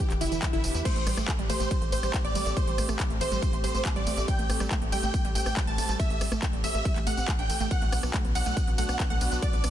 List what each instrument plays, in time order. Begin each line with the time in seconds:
Already playing: string section E3 B3 D4 G4 F#5, synth pluck G4, supersaw synth G4
0.10 analog synth bass E1, synth arpeggio sound E3, clap, closed hi-hat
0.21 analog synth bass E1, synth arpeggio sound D3, synth pluck E4, supersaw synth E4, open hi-hat, tambourine
0.26 closed hi-hat
0.32 analog synth bass E1, synth arpeggio sound E3, closed hi-hat, tambourine
0.42 synth arpeggio sound E3, kick, clap, closed hi-hat, tambourine
0.53 analog synth bass F#1, synth arpeggio sound D3, synth pluck E4, supersaw synth E4, closed hi-hat
0.64 analog synth bass E1, synth arpeggio sound E3, open hi-hat, tambourine
0.74 analog synth bass E2, synth arpeggio sound E3, closed hi-hat, tambourine
0.85 synth arpeggio sound A3, string section A3 C4, synth pluck C5, supersaw synth C5, kick, closed hi-hat, crash, ride, tambourine
0.96 analog synth bass A1, synth arpeggio sound A3, closed hi-hat
1.07 analog synth bass A1, synth arpeggio sound G3, cross-stick, open hi-hat, ride, tambourine
1.17 analog synth bass A1, synth arpeggio sound A3, cross-stick, closed hi-hat, tambourine
1.28 synth arpeggio sound A3, kick, clap, closed hi-hat, ride, tambourine
1.39 analog synth bass A1, synth arpeggio sound G3, closed hi-hat
1.50 analog synth bass A1, synth arpeggio sound A3, synth pluck C5, supersaw synth C5, open hi-hat, ride, tambourine
1.60 analog synth bass A1, synth arpeggio sound A3, closed hi-hat, tambourine
1.71 synth arpeggio sound G3, kick, closed hi-hat, ride, tambourine
1.82 analog synth bass A1, synth arpeggio sound A3, closed hi-hat
1.92 analog synth bass A1, synth arpeggio sound A3, synth pluck C5, supersaw synth C5, open hi-hat, ride, tambourine
1.98 closed hi-hat
2.03 analog synth bass A1, synth arpeggio sound G3, cross-stick, closed hi-hat, tambourine
2.14 synth arpeggio sound A3, kick, clap, closed hi-hat, ride, tambourine
2.24 analog synth bass A1, synth arpeggio sound A3, synth pluck D5, supersaw synth D5, closed hi-hat
2.35 analog synth bass A1, synth arpeggio sound G3, open hi-hat, ride, tambourine
2.46 analog synth bass A1, synth arpeggio sound A3, closed hi-hat, tambourine
2.57 synth arpeggio sound A3, synth pluck C5, supersaw synth C5, kick, closed hi-hat, ride, tambourine
2.67 analog synth bass A1, synth arpeggio sound G3, closed hi-hat
2.78 analog synth bass A1, synth arpeggio sound A3, cross-stick, open hi-hat, ride, tambourine
2.89 analog synth bass A1, synth arpeggio sound A3, cross-stick, closed hi-hat, tambourine
2.99 synth arpeggio sound G3, kick, clap, closed hi-hat, ride, tambourine
3.10 analog synth bass A1, synth arpeggio sound A3, closed hi-hat
3.21 analog synth bass A1, synth arpeggio sound A3, supersaw synth C5, synth pluck C5, open hi-hat, ride, tambourine
3.32 analog synth bass A1, synth arpeggio sound G3, closed hi-hat, tambourine
3.42 synth arpeggio sound A3, kick, closed hi-hat, ride, tambourine
3.53 analog synth bass A1, synth arpeggio sound A3, closed hi-hat
3.64 analog synth bass A1, synth arpeggio sound G3, synth pluck C5, supersaw synth C5, open hi-hat, ride, tambourine
3.69 closed hi-hat
3.75 analog synth bass A1, synth arpeggio sound A3, closed hi-hat, tambourine
3.85 synth arpeggio sound A3, kick, clap, closed hi-hat, ride, tambourine
3.96 analog synth bass A1, synth arpeggio sound G3, synth pluck D5, supersaw synth D5, closed hi-hat
4.07 analog synth bass A1, synth arpeggio sound A3, open hi-hat, ride, tambourine
4.17 analog synth bass A1, synth arpeggio sound A3, closed hi-hat, tambourine
4.28 synth arpeggio sound G3, supersaw synth G5, synth pluck G5, kick, closed hi-hat, ride, tambourine
4.39 analog synth bass A1, synth arpeggio sound A3, closed hi-hat
4.50 analog synth bass A1, synth arpeggio sound A3, cross-stick, open hi-hat, ride, tambourine
4.60 analog synth bass A1, synth arpeggio sound G3, cross-stick, closed hi-hat, tambourine
4.71 synth arpeggio sound A3, kick, clap, closed hi-hat, ride, tambourine
4.82 analog synth bass A1, synth arpeggio sound A3, closed hi-hat
4.92 analog synth bass A1, synth arpeggio sound G3, supersaw synth G5, synth pluck G5, open hi-hat, ride, tambourine
5.03 analog synth bass A1, synth arpeggio sound A3, closed hi-hat, tambourine
5.14 synth arpeggio sound A3, kick, closed hi-hat, ride, tambourine
5.25 analog synth bass A1, synth arpeggio sound G3, closed hi-hat
5.35 analog synth bass A1, synth arpeggio sound A3, supersaw synth G5, synth pluck G5, open hi-hat, ride, tambourine
5.41 closed hi-hat
5.46 analog synth bass A1, synth arpeggio sound A3, cross-stick, closed hi-hat, tambourine
5.57 synth arpeggio sound G3, kick, clap, closed hi-hat, ride, tambourine
5.67 analog synth bass A1, synth arpeggio sound A3, synth pluck A5, supersaw synth A5, closed hi-hat
5.78 analog synth bass A1, synth arpeggio sound A3, open hi-hat, ride, tambourine
5.89 analog synth bass A1, synth arpeggio sound G3, closed hi-hat, tambourine
6.00 synth arpeggio sound A3, synth pluck E5, supersaw synth E5, kick, closed hi-hat, ride, tambourine
6.10 analog synth bass A1, synth arpeggio sound A3, closed hi-hat
6.21 analog synth bass A1, synth arpeggio sound G3, cross-stick, open hi-hat, ride, tambourine
6.32 analog synth bass A1, synth arpeggio sound A3, cross-stick, closed hi-hat, tambourine
6.42 synth arpeggio sound A3, kick, clap, closed hi-hat, ride, tambourine
6.53 analog synth bass A1, synth arpeggio sound G3, closed hi-hat
6.64 analog synth bass A1, synth arpeggio sound A3, supersaw synth E5, synth pluck E5, open hi-hat, ride, tambourine
6.75 analog synth bass A1, synth arpeggio sound A3, closed hi-hat, tambourine
6.85 synth arpeggio sound G3, kick, closed hi-hat, ride, tambourine
6.96 analog synth bass A1, synth arpeggio sound A3, clap, closed hi-hat
7.07 analog synth bass A1, synth arpeggio sound A3, supersaw synth F#5, synth pluck F#5, open hi-hat, ride, tambourine
7.12 closed hi-hat
7.17 analog synth bass A1, synth arpeggio sound C4, closed hi-hat, tambourine
7.28 synth arpeggio sound A3, kick, clap, closed hi-hat, ride, tambourine
7.39 analog synth bass A1, synth arpeggio sound D4, supersaw synth G5, synth pluck G5, closed hi-hat
7.50 analog synth bass A1, synth arpeggio sound A4, open hi-hat, ride, tambourine
7.60 analog synth bass A1, synth arpeggio sound A3, closed hi-hat, tambourine
7.71 string section B3 D4 F#4, synth arpeggio sound B3, supersaw synth F#5, synth pluck F#5, kick, closed hi-hat, ride, tambourine
7.82 analog synth bass B1, synth arpeggio sound A3, closed hi-hat
7.92 analog synth bass B1, synth arpeggio sound B3, cross-stick, open hi-hat, ride, tambourine
8.03 analog synth bass B1, synth arpeggio sound B3, cross-stick, closed hi-hat, tambourine
8.14 synth arpeggio sound A3, kick, clap, closed hi-hat, ride
8.25 analog synth bass B1, synth arpeggio sound B3, closed hi-hat
8.35 analog synth bass B1, synth arpeggio sound B3, supersaw synth F#5, synth pluck F#5, open hi-hat, ride, tambourine
8.46 analog synth bass B1, synth arpeggio sound A3, closed hi-hat, tambourine
8.57 synth arpeggio sound B3, kick, closed hi-hat, ride, tambourine
8.67 analog synth bass B1, synth arpeggio sound B3, closed hi-hat
8.78 analog synth bass B1, synth arpeggio sound A3, synth pluck F#5, supersaw synth F#5, open hi-hat, ride, tambourine
8.84 closed hi-hat
8.89 analog synth bass B1, synth arpeggio sound B3, cross-stick, closed hi-hat, tambourine
9.00 synth arpeggio sound B3, kick, clap, closed hi-hat, ride, tambourine
9.10 analog synth bass B1, synth arpeggio sound A3, synth pluck F#5, supersaw synth F#5, closed hi-hat
9.21 analog synth bass B1, synth arpeggio sound B3, open hi-hat, ride, tambourine
9.32 analog synth bass B1, synth arpeggio sound B3, closed hi-hat, tambourine
9.42 synth arpeggio sound A3, synth pluck D5, supersaw synth D5, kick, closed hi-hat, ride, tambourine
9.53 analog synth bass B1, synth arpeggio sound B3, closed hi-hat
9.64 analog synth bass B1, synth arpeggio sound B3, cross-stick, open hi-hat, ride, tambourine